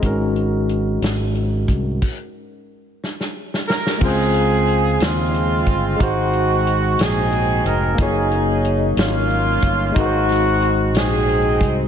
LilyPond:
<<
  \new Staff \with { instrumentName = "Horn section" } { \time 6/8 \key des \major \tempo 4. = 60 << { r2. | r2 r8 bes'8 | aes'4. f'4. | ges'4. aes'4 bes'8 |
aes'4 r8 f'4. | ges'4. aes'4 r8 | } \\ { r2. | r2. | <c' f'>4. <aes c'>4. | <c' ees'>4. <c' ees'>4. |
<des' ees'>4. <bes des'>4. | <c' ees'>4. <c' ees'>4. | } >> }
  \new Staff \with { instrumentName = "Tine electric piano" } { \time 6/8 \key des \major <aes c' des' ges' bes'>2. | r2. | <aes c' f' c''>2. | <aes ees' ges' c''>2. |
<ges bes ees' f' des''>2. | <aes ees' ges' bes' c''>2. | }
  \new Staff \with { instrumentName = "Tine electric piano" } { \clef bass \time 6/8 \key des \major aes,4. r4. | r2. | des4. r4. | aes,4. r4. |
r2. | aes,4. r4. | }
  \new Staff \with { instrumentName = "Fingered electric bass" } { \clef bass \time 6/8 \key des \major aes,,4. aes,,4 c,8 | r2. | des,4. ees,4 g,,8 | aes,,4. bes,,4 f,,8 |
ges,,4. aes,,4 g,,8 | aes,,4. bes,,4 c,8 | }
  \new DrumStaff \with { instrumentName = "Drums" } \drummode { \time 6/8 <hh bd>8 hh8 hh8 <hh sn>8 hh8 <hh bd>8 | <cymc bd>4. sn16 sn8 sn16 sn16 sn16 | <cymc bd>8 hh8 hh8 <hh sn>8 hh8 <hh bd>8 | <hh bd>8 hh8 hh8 <hh sn>8 hh8 hh8 |
<hh bd>8 hh8 hh8 <hh sn>8 hh8 <hh bd>8 | <hh bd>8 <hh sn>8 hh8 <hh sn>8 hh8 <hh bd>8 | }
>>